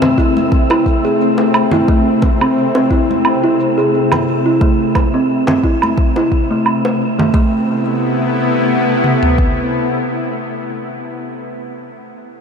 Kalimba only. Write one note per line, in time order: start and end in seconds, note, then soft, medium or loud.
0.02 0.11 C4 medium
0.18 0.69 E4 medium
0.71 1.03 E4 medium
1.05 1.19 G#4 medium
1.73 1.82 E4 medium
1.88 1.99 A3 medium
2.41 2.56 C4 medium
2.75 2.84 C4 medium
2.91 3.41 E4 medium
3.44 3.76 E4 medium
3.78 3.92 G#4 medium
4.46 4.54 E4 medium
4.61 4.72 A3 medium
5.14 5.29 C4 medium
5.48 5.57 C4 medium
5.64 6.15 E4 medium
6.17 6.30 E4 medium
6.51 6.65 A3 medium
7.19 7.33 A3 medium
7.34 7.66 A3 medium